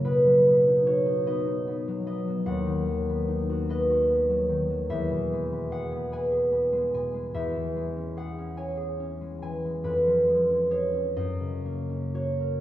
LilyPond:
<<
  \new Staff \with { instrumentName = "Harp" } { \time 6/8 \key b \major \tempo 4. = 49 <b' fis''>4 cis''8 dis''4 dis''8 | fis''4. dis''4. | e''4 fis''8 gis''4 gis''8 | e''4 fis''8 gis''4 gis''8 |
b'4 cis''8 dis''4 cis''8 | }
  \new Staff \with { instrumentName = "Harp" } { \time 6/8 \key b \major <b, fis fis'>16 fis16 b16 dis'16 fis'16 dis'16 b16 dis'16 b16 fis16 b16 fis16 | dis,16 dis16 fis16 b16 dis'16 fis'16 b'16 fis'16 b16 fis16 dis16 fis16 | e,16 b,16 gis16 b16 gis'16 b16 b'16 gis'16 b16 gis16 b,16 gis16 | e,16 e16 gis16 cis'16 gis'16 cis'16 cis''16 gis'16 cis'16 gis16 e16 gis16 |
eis,16 eis16 gis16 cis'16 gis'16 cis'16 fis,16 cis16 ais16 cis'16 fis'16 ais'16 | }
>>